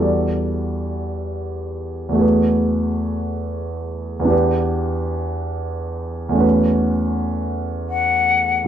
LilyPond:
<<
  \new Staff \with { instrumentName = "Flute" } { \time 3/4 \key e \dorian \tempo 4 = 84 r2. | r2. | r2. | r2 fis''4 | }
  \new Staff \with { instrumentName = "Grand piano" } { \time 3/4 \key e \dorian <e, g fis' a' d''>2. | <e, a fis' gis' b'>2. | <e, b d' g' b'>2. | <e, a cis' fis' b'>2. | }
>>